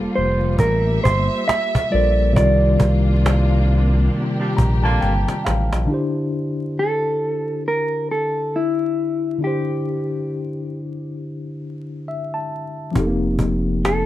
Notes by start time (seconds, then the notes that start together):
Already playing: G3 A#3 F4 A4 C5 A5
0.00 F1
0.15 F1 C5, cajon slap
0.41 cajon slap
0.59 A1 A#4 E5, cajon bass
1.04 G1 C5, cajon bass
1.31 cajon slap
1.48 E5, cajon slap
1.75 cajon bass
1.91 A#1 G3 F4 A4 A#4 D5, cajon slap
1.95 C5
2.32 C3 D#3 G3 D5, cajon bass
2.37 C2 C3 A#3 C4 D4 F4 A#4
2.41 D5
2.80 C2, cajon bass, cajon slap
3.26 cajon slap
3.68 cajon slap
3.94 cajon slap
4.12 G4, cajon slap
4.39 A#2 G3 D4
4.57 A#1 A#5, cajon bass, cajon slap
4.83 D3 A#3 F4 A5, cajon slap
5.01 G5, cajon slap
5.02 G1, cajon slap
5.28 cajon slap
5.45 A1 F5, cajon slap
5.73 A#1, cajon slap
5.85 D3 D4
5.90 E4 G4
5.94 C5
6.79 A4
7.68 A#4
8.11 A4
8.56 E4
9.38 D3 D4
9.43 E4 G4
9.47 C5
12.08 E5
12.34 A5
12.91 F3 C4
12.96 F1 D#4 G4, cajon bass
13.00 A4
13.07 A#3
13.39 cajon bass
13.65 cajon slap
13.85 A4, cajon slap